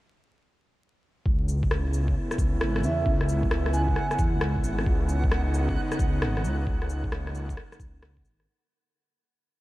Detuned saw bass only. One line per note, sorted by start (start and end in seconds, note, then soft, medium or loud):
1.26 2.15 C#2 medium
2.38 2.63 C#2 medium
2.61 2.85 G#1 medium
2.83 3.05 E2 medium
3.06 3.95 C#2 medium
4.19 4.35 E2 medium
4.33 4.65 C#2 medium
4.64 4.85 G#1 medium
4.86 5.76 C#2 medium
5.99 6.24 C#2 medium
6.22 6.46 G#1 loud
6.45 6.66 C#2 medium
6.67 7.56 C#2 medium
7.80 7.93 C#2 medium
7.94 8.27 C#2 medium
8.25 8.46 G#1 medium